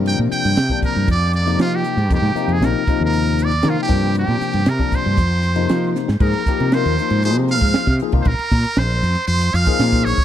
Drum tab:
CC |----------------|----------------|----------------|x---------------|
RD |x-xxx-x-x-xxx-xx|x-xxx-x-x-xxx-x-|x-xxx-x-x-xxx---|-x-xxx-xxx-xxx-x|
HH |p-p-p-p-p-p-p-p-|p-p-p-p-p-p-p-p-|p-p-p-p-p-p-p-p-|--p---p---p---p-|
SD |----o-------o---|--o-o-------o---|--o-o-------o-oo|--o-ooo-----o---|
BD |-----oo-o-------|o-----o-------o-|-----oo-o-------|o-o--------o-o-o|

CC |----------------|
RD |xx-xxx-xxx-xxx-x|
HH |--p---p---p---p-|
SD |--o-o-------o---|
BD |o-o--------o-o-o|